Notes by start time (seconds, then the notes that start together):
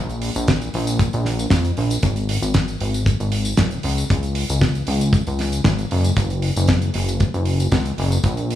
Already playing: A#1
0.09 closed hi-hat, tambourine
0.22 open hi-hat
0.35 A#1, closed hi-hat, tambourine
0.48 kick, snare, closed hi-hat, tambourine
0.62 closed hi-hat, tambourine
0.74 A#1, open hi-hat
0.87 closed hi-hat, tambourine
0.99 kick, closed hi-hat, tambourine
1.13 A#1, closed hi-hat, tambourine
1.25 snare, open hi-hat
1.39 closed hi-hat, tambourine
1.50 F2, kick, snare, closed hi-hat, tambourine
1.65 closed hi-hat, tambourine
1.77 A#1, open hi-hat
1.90 closed hi-hat, tambourine
2.03 G#1, kick, closed hi-hat, tambourine
2.16 closed hi-hat, tambourine
2.29 open hi-hat
2.42 G#1, closed hi-hat, tambourine
2.54 kick, snare, closed hi-hat, tambourine
2.68 closed hi-hat, tambourine
2.81 G#1, open hi-hat
2.94 closed hi-hat, tambourine
3.06 kick, closed hi-hat, tambourine
3.20 G#1, closed hi-hat, tambourine
3.32 open hi-hat
3.45 closed hi-hat, tambourine
3.57 D#1, kick, snare, closed hi-hat, tambourine
3.71 closed hi-hat, tambourine
3.83 C#2, open hi-hat
3.97 closed hi-hat, tambourine
4.10 C#2, kick, closed hi-hat, tambourine
4.23 closed hi-hat, tambourine
4.35 open hi-hat
4.49 C#2, closed hi-hat, tambourine
4.61 kick, snare, closed hi-hat, tambourine
4.75 closed hi-hat, tambourine
4.87 C#2, open hi-hat
5.01 closed hi-hat, tambourine
5.13 kick, closed hi-hat, tambourine
5.27 C#2, closed hi-hat, tambourine
5.39 snare, open hi-hat
5.52 closed hi-hat, tambourine
5.64 G#1, kick, snare, closed hi-hat, tambourine
5.78 closed hi-hat, tambourine
5.91 F#1, open hi-hat
6.04 closed hi-hat, tambourine
6.16 F#1, kick, closed hi-hat, tambourine
6.30 closed hi-hat, tambourine
6.42 open hi-hat
6.56 F#1, closed hi-hat, tambourine
6.68 kick, snare, closed hi-hat, tambourine
6.82 closed hi-hat, tambourine
6.94 F#1, open hi-hat
7.08 closed hi-hat, tambourine
7.20 kick, closed hi-hat, tambourine
7.34 F#1, closed hi-hat, tambourine
7.45 open hi-hat
7.60 closed hi-hat, tambourine
7.72 C#2, kick, snare, closed hi-hat, tambourine
7.85 closed hi-hat, tambourine
7.98 F#1, open hi-hat
8.11 closed hi-hat, tambourine
8.24 A#1, kick, closed hi-hat, tambourine
8.37 closed hi-hat, tambourine
8.50 open hi-hat